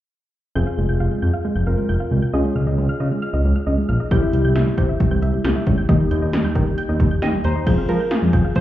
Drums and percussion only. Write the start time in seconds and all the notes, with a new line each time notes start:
4.11 kick, closed hi-hat
4.33 closed hi-hat
4.56 snare, closed hi-hat
4.78 kick, closed hi-hat
5.00 kick, closed hi-hat
5.22 closed hi-hat
5.44 snare, closed hi-hat
5.67 kick, closed hi-hat
5.89 kick, closed hi-hat
6.11 closed hi-hat
6.33 snare, closed hi-hat
6.55 kick, closed hi-hat
6.78 closed hi-hat
7.00 kick, closed hi-hat
7.22 snare, closed hi-hat
7.44 closed hi-hat
7.67 kick, closed hi-hat, crash
7.89 closed hi-hat
8.11 snare, closed hi-hat
8.33 kick, closed hi-hat
8.55 kick, closed hi-hat